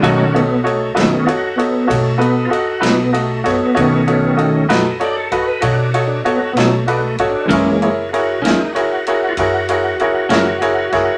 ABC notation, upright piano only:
X:1
M:12/8
L:1/8
Q:3/8=64
K:Bmix
V:1 name="Upright piano"
[DFAc] [DFAc] [DFAc] [DFAB] [DFAc] [DFAc] [DFAc] [DFAB] [DFAd] [DFAB] [DFAd] [DFAc] | [DFAc] [DFAc] [DFAd] [DFAB] [DFAc] [DFAB] [DFAc] [DFAc] [DFAc] [DFAc] [DFAB] [DFAc] | [EG^Ac] [EGAc] [EGAc] [EGAd] [EGAc] [EGAc] [EGAc] [EGAc] [EGAc] [EGAc] [EGAc] [EGAc] |]